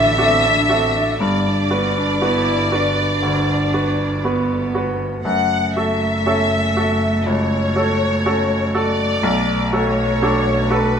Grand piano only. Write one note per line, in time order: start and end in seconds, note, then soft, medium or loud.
0.00 1.22 D3 medium
0.00 0.18 D4 medium
0.00 0.19 F#4 medium
0.00 0.18 A4 medium
0.18 0.65 D4 medium
0.18 0.65 F#4 medium
0.18 0.65 A4 medium
0.69 1.16 F#4 medium
0.69 1.16 A4 medium
1.20 1.69 G2 medium
1.70 2.17 F#4 soft
1.70 2.17 B4 medium
2.22 2.68 B3 soft
2.22 2.68 F#4 soft
2.22 2.68 B4 soft
2.72 3.19 F#4 soft
2.72 3.19 B4 soft
3.22 3.72 D2 soft
3.74 4.20 F#4 soft
3.74 4.20 B4 soft
4.24 4.71 B3 soft
4.24 4.71 F#4 soft
4.24 4.71 B4 soft
4.75 5.21 F#4 soft
4.75 5.22 B4 soft
5.25 5.74 F#2 medium
5.76 6.23 F#4 soft
5.76 6.23 A4 soft
6.26 6.72 C#4 soft
6.26 6.72 F#4 soft
6.26 6.73 A4 medium
6.77 7.22 F#4 soft
6.77 7.22 A4 medium
7.26 7.74 C#2 medium
7.76 8.21 F#4 soft
7.76 8.22 A4 medium
8.25 8.71 C#4 soft
8.25 8.71 F#4 soft
8.25 8.71 A4 medium
8.74 9.20 F#4 medium
8.74 9.20 A4 medium
9.23 9.72 B1 medium
9.73 10.18 F#4 medium
9.73 10.19 A4 medium
10.22 10.68 D4 medium
10.22 10.68 F#4 medium
10.22 10.68 A4 medium
10.70 10.99 F#4 medium
10.70 10.99 A4 medium